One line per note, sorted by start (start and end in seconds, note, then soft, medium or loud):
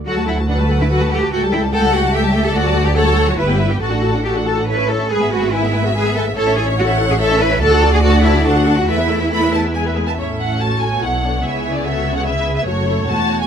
0.07 1.28 D2 medium
0.07 0.16 F#3 soft
0.07 0.26 F#4 medium
0.07 0.16 A4 soft
0.07 0.17 F#5 soft
0.17 0.28 A3 soft
0.17 0.28 F#4 soft
0.17 0.28 A5 soft
0.27 0.38 F#3 soft
0.27 0.36 E4 medium
0.27 0.38 A4 soft
0.27 0.38 F#5 soft
0.37 0.49 A3 soft
0.37 0.49 F#4 soft
0.37 0.48 A5 soft
0.48 0.59 F#3 soft
0.48 0.56 D4 medium
0.48 0.59 A4 soft
0.48 1.28 B4 medium
0.48 0.58 F#5 soft
0.59 0.70 A3 soft
0.59 0.70 F#4 soft
0.59 0.69 A5 soft
0.69 0.80 F#3 soft
0.69 0.80 A4 soft
0.69 0.80 F#5 soft
0.81 0.91 A3 soft
0.81 0.85 E4 medium
0.81 0.91 F#4 soft
0.81 0.91 A5 soft
0.91 1.01 F#3 soft
0.91 1.11 F#4 medium
0.91 1.01 A4 soft
0.91 1.01 F#5 soft
1.02 1.12 A3 soft
1.02 1.12 F#4 soft
1.02 1.12 A5 soft
1.11 1.22 F#3 soft
1.11 1.32 G4 medium
1.11 1.22 A4 soft
1.11 1.21 F#5 soft
1.21 1.32 A3 soft
1.21 1.32 F#4 soft
1.21 1.32 A5 soft
1.32 2.52 C#2 medium
1.32 1.42 A3 soft
1.32 1.40 F#4 medium
1.32 1.73 A4 medium
1.32 1.42 A4 medium
1.32 1.42 G5 soft
1.43 1.53 G3 medium
1.43 1.53 G4 soft
1.43 1.53 A5 soft
1.52 1.63 A3 soft
1.52 1.60 E4 medium
1.52 1.63 A4 soft
1.52 1.63 G5 medium
1.63 1.73 G3 medium
1.63 1.73 G4 soft
1.63 1.73 A5 soft
1.73 1.83 A3 medium
1.73 1.93 A4 medium
1.73 1.83 A4 medium
1.73 2.13 F#5 medium
1.73 1.82 G5 medium
1.83 1.93 G3 medium
1.83 1.93 G4 medium
1.83 1.94 A5 medium
1.94 2.04 A3 medium
1.94 2.14 F#4 medium
1.94 2.04 A4 medium
1.94 2.04 G5 soft
2.04 2.14 G3 medium
2.04 2.14 G4 medium
2.04 2.14 A5 medium
2.14 2.23 A3 medium
2.14 2.44 G4 medium
2.14 2.23 A4 medium
2.14 2.55 E5 medium
2.14 2.23 G5 medium
2.23 2.34 G3 medium
2.23 2.34 G4 medium
2.23 2.34 A5 soft
2.33 2.45 A3 medium
2.33 2.44 A4 medium
2.33 2.44 G5 medium
2.42 2.55 G3 medium
2.42 2.55 G4 soft
2.42 2.55 A4 medium
2.42 2.54 A5 medium
2.53 3.38 D2 medium
2.53 2.64 A3 medium
2.53 2.85 F#4 medium
2.53 2.64 A4 medium
2.53 2.96 D5 medium
2.53 2.63 F#5 medium
2.65 2.75 F#3 medium
2.65 2.75 F#4 medium
2.65 2.75 A5 medium
2.75 2.85 A3 medium
2.75 2.85 A4 medium
2.75 2.85 F#5 medium
2.85 2.96 F#3 medium
2.85 2.96 F#4 medium
2.85 2.96 G4 medium
2.85 2.95 A5 medium
2.95 3.05 A3 medium
2.95 3.05 A4 medium
2.95 3.27 A4 medium
2.95 3.37 C#5 medium
2.95 3.05 F#5 medium
3.05 3.17 F#3 medium
3.05 3.17 F#4 medium
3.05 3.16 A5 medium
3.16 3.27 A3 medium
3.16 3.27 A4 medium
3.16 3.27 F#5 medium
3.27 3.38 F#3 soft
3.27 3.38 F#4 medium
3.27 3.38 A5 soft
3.37 3.80 G1 medium
3.37 3.48 G3 soft
3.37 3.70 E4 medium
3.37 3.80 B4 medium
3.37 3.48 B4 medium
3.37 3.47 E5 soft
3.48 3.59 B3 medium
3.48 3.59 G4 medium
3.48 3.59 G5 soft
3.58 3.70 G3 soft
3.58 3.70 B4 medium
3.58 3.69 E5 soft
3.70 3.81 B3 soft
3.70 3.81 G4 soft
3.70 3.81 G4 medium
3.70 3.81 G5 soft
3.80 4.88 A1 medium
3.80 3.91 F#4 soft
3.80 4.24 F#4 medium
3.80 4.87 A4 medium
3.80 3.91 A4 soft
3.80 3.91 A5 soft
3.92 4.03 D4 soft
3.92 4.01 F#4 soft
3.92 4.03 F#5 soft
4.02 4.13 F#4 soft
4.02 4.14 A4 soft
4.02 4.14 A5 soft
4.14 4.25 D4 soft
4.14 4.24 F#4 soft
4.14 4.25 F#5 soft
4.24 4.35 F#4 soft
4.24 4.32 G4 medium
4.24 4.35 A4 soft
4.24 4.35 A5 soft
4.36 4.46 D4 soft
4.36 4.46 F#4 soft
4.36 4.47 F#5 soft
4.46 4.57 F#4 soft
4.46 4.67 A4 medium
4.46 4.57 A4 soft
4.46 4.57 A5 soft
4.57 4.68 D4 soft
4.57 4.68 F#4 soft
4.57 4.68 F#5 soft
4.68 4.78 E4 soft
4.68 4.78 A4 soft
4.68 4.89 B4 medium
4.68 4.78 C#5 soft
4.78 4.90 C#4 soft
4.78 4.90 C#5 soft
4.78 4.89 E5 soft
4.88 5.01 E4 soft
4.88 5.10 A4 medium
4.88 5.00 A4 soft
4.88 5.00 C#5 soft
4.99 5.11 C#4 soft
4.99 5.11 C#5 soft
4.99 5.11 E5 soft
5.09 6.33 G#1 medium
5.09 5.21 G#3 soft
5.09 5.32 G#4 medium
5.09 5.50 B4 medium
5.09 5.21 B4 soft
5.09 5.20 G#5 soft
5.21 5.33 B3 soft
5.21 5.33 G#4 soft
5.21 5.32 E5 soft
5.31 5.44 G#3 soft
5.31 5.53 F#4 medium
5.31 5.43 B4 soft
5.31 5.42 G#5 soft
5.41 5.54 B3 soft
5.41 5.54 G#4 soft
5.41 5.53 E5 soft
5.52 5.64 G#3 medium
5.52 5.85 E4 medium
5.52 5.64 B4 soft
5.52 6.37 E5 medium
5.52 5.63 G#5 soft
5.63 5.75 B3 soft
5.63 5.75 G#4 soft
5.63 5.74 E5 soft
5.73 5.86 G#3 medium
5.73 5.86 B4 medium
5.73 5.84 G#5 soft
5.84 5.96 B3 soft
5.84 5.89 F#4 medium
5.84 5.96 G#4 soft
5.84 5.95 E5 soft
5.94 6.06 G#3 medium
5.94 6.16 G#4 medium
5.94 6.06 B4 soft
5.94 6.05 G#5 soft
6.05 6.17 B3 soft
6.05 6.17 G#4 soft
6.05 6.16 E5 soft
6.15 6.27 G#3 soft
6.15 6.24 A4 medium
6.15 6.27 B4 soft
6.15 6.26 G#5 soft
6.25 6.38 B3 soft
6.25 6.38 G#4 soft
6.25 6.36 E5 soft
6.36 7.59 A1 medium
6.36 6.47 E4 medium
6.36 6.58 A4 medium
6.36 6.47 A4 medium
6.36 6.46 C#5 medium
6.36 6.78 C#5 medium
6.46 6.59 C#4 soft
6.46 6.58 C#5 medium
6.46 6.57 E5 medium
6.56 6.69 E4 medium
6.56 6.65 G#4 medium
6.56 6.69 A4 soft
6.56 6.68 C#5 medium
6.66 6.79 C#4 medium
6.66 6.79 C#5 medium
6.66 6.78 E5 medium
6.77 6.89 E4 medium
6.77 6.87 F#4 medium
6.77 6.89 A4 medium
6.77 6.88 C#5 medium
6.77 7.21 F#5 medium
6.88 7.00 C#4 medium
6.88 7.00 C#5 medium
6.88 6.99 E5 medium
6.98 7.11 E4 medium
6.98 7.10 A4 medium
6.98 7.09 C#5 medium
7.09 7.21 C#4 soft
7.09 7.15 G#4 medium
7.09 7.21 C#5 medium
7.09 7.20 E5 medium
7.19 7.30 E4 medium
7.19 7.41 A4 loud
7.19 7.30 A4 medium
7.19 7.30 C#5 medium
7.19 7.62 E5 medium
7.30 7.41 C#4 medium
7.30 7.41 C#5 medium
7.30 7.41 E5 medium
7.41 7.52 E4 medium
7.41 7.52 A4 medium
7.41 7.62 B4 medium
7.41 7.52 C#5 medium
7.51 7.62 C#4 soft
7.51 7.62 C#5 medium
7.51 7.62 E5 medium
7.61 8.87 D2 medium
7.61 7.71 F#4 medium
7.61 7.92 A4 loud
7.61 7.71 A4 medium
7.61 8.42 D5 medium
7.61 7.72 A5 medium
7.72 7.82 D4 medium
7.72 7.81 F#4 medium
7.72 7.83 F#5 medium
7.82 7.92 F#4 medium
7.82 7.93 A4 medium
7.82 7.93 A5 medium
7.93 8.03 D4 medium
7.93 8.02 F#4 medium
7.93 8.03 G#4 medium
7.93 8.03 F#5 medium
8.03 8.23 F#4 loud
8.03 8.12 F#4 medium
8.03 8.12 A4 medium
8.03 8.14 A5 medium
8.13 8.24 D4 medium
8.13 8.22 F#4 medium
8.13 8.24 F#5 medium
8.23 8.44 E4 medium
8.23 8.32 F#4 medium
8.23 8.34 A4 medium
8.23 8.35 A5 medium
8.33 8.44 D4 medium
8.33 8.43 F#4 medium
8.33 8.45 F#5 medium
8.44 8.76 D4 medium
8.44 8.54 F#4 medium
8.44 8.54 A4 medium
8.44 8.87 F#5 medium
8.44 8.54 A5 medium
8.55 8.66 D4 medium
8.55 8.65 F#4 medium
8.55 8.66 F#5 medium
8.66 8.76 F#4 medium
8.66 8.76 A4 medium
8.66 8.77 A5 medium
8.77 8.88 D4 soft
8.77 8.87 F#4 medium
8.77 8.88 F#4 soft
8.77 8.88 F#5 medium
8.87 9.95 E2 medium
8.87 8.98 A3 soft
8.87 9.97 E4 medium
8.87 8.97 A4 medium
8.87 8.97 B4 medium
8.87 9.26 E5 medium
8.98 9.09 B3 medium
8.98 9.09 B4 soft
8.98 9.09 E5 soft
9.09 9.20 A3 soft
9.09 9.20 A4 soft
9.09 9.20 B4 medium
9.20 9.31 B3 soft
9.20 9.31 B4 soft
9.20 9.31 E5 soft
9.31 9.41 A3 medium
9.31 9.41 A4 medium
9.31 9.41 B4 medium
9.31 9.51 B5 medium
9.42 9.53 B3 soft
9.42 9.53 B4 soft
9.42 9.53 E5 soft
9.53 9.64 A3 medium
9.53 9.64 A4 soft
9.53 9.64 B4 soft
9.53 9.61 A5 medium
9.65 9.75 B3 soft
9.65 9.75 B4 soft
9.65 9.75 E5 soft
9.75 9.85 G#3 soft
9.75 9.85 G#4 soft
9.75 9.83 G#5 medium
9.75 9.85 G#5 soft
9.86 9.97 B3 soft
9.86 9.97 B4 soft
9.86 9.97 E5 soft
9.98 10.08 G#3 soft
9.98 10.08 G#4 soft
9.98 10.08 G#5 soft
10.08 10.18 B3 soft
10.08 10.18 B4 soft
10.08 10.19 E5 soft
10.08 10.12 A5 medium
10.18 10.99 A1 soft
10.18 10.99 A2 soft
10.18 10.99 C#4 soft
10.18 10.58 E4 soft
10.18 11.40 A4 soft
10.18 10.27 C#5 medium
10.18 10.57 E5 soft
10.40 10.60 F#5 medium
10.60 11.02 F#4 soft
10.60 11.44 C#5 soft
10.60 10.82 A5 medium
10.82 11.03 G#5 medium
11.02 11.44 B1 soft
11.02 11.44 B2 soft
11.02 12.67 B3 soft
11.02 11.24 E4 soft
11.02 11.44 F#5 medium
11.24 11.44 D4 soft
11.43 12.67 C#2 soft
11.43 12.67 C#3 soft
11.43 11.85 E4 soft
11.43 11.84 G#4 soft
11.43 12.25 C#5 soft
11.43 11.75 E5 medium
11.74 11.85 D5 soft
11.84 12.25 F#4 soft
11.84 12.26 A4 soft
11.84 12.15 E5 medium
12.16 12.26 F#5 medium
12.25 12.67 E4 soft
12.25 12.67 G#4 soft
12.25 12.67 B4 soft
12.25 12.55 E5 medium
12.56 12.67 E5 medium
12.66 13.08 F#1 medium
12.66 13.08 F#2 medium
12.66 13.08 A3 soft
12.66 12.88 F#4 soft
12.66 13.08 A4 soft
12.66 13.07 C#5 medium
12.66 13.07 C#5 soft
12.88 12.96 E4 soft
13.08 13.47 E1 soft
13.08 13.47 E2 soft
13.08 13.47 A3 soft
13.08 13.47 F#4 medium
13.08 13.47 F#4 soft
13.08 13.47 C#5 medium
13.08 13.40 A5 medium
13.41 13.47 G#5 medium